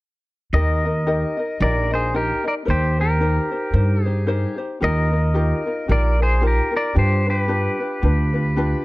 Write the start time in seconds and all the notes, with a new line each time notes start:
0.53 D#2 D#4 G4 A#4 D#5
0.85 D#4 A#4 D#5
1.07 D#4 G4 A#4 D#5
1.37 D#4 A#4 D#5
1.60 A#1 D#4 G4 A#4 D5 D#5
1.91 D#4 A#4 C5 D#5
1.95 G#4
2.14 D#4 G4 A#4 D#5
2.44 D#4 A#4 D5 D#5
2.65 D#2 D#4 G4 A#4 C5
2.70 G4 C5
2.99 D#4 G4 A#4 C5
3.20 D#4 G4 A#4 C5
3.51 D#4 G4 C5
3.73 G2 D#4 G4 A#4 C5
4.04 D#4 G4 G#4 C5
4.27 D#4 G4 A#4 C5
4.58 D#4 G4 C5
4.81 D#2 D#4 F4 G4 A#4 D#5
4.85 A#4
5.12 D#4 F4 A#4
5.34 D#4 F4 G4 A#4
5.66 D#4 F4 A#4
5.88 A#1 D#4 F4 G4 A#4
5.92 D5
6.19 D#4 F4 G#4 A#4
6.23 C5
6.41 D#4 F4 G4 A#4
6.47 G4 A#4
6.72 D#4 F4 A#4
6.76 A#4 D5
6.95 G2 D4 F4 G4 B4
6.99 C5
7.26 D4 F4 G4 B4
7.30 B4
7.48 D4 F4 G4 B4
7.80 D4 F4 B4
8.02 D2 D4 F4 G4 B4
8.33 D4 F4 B4
8.56 D4 F4 G4 B4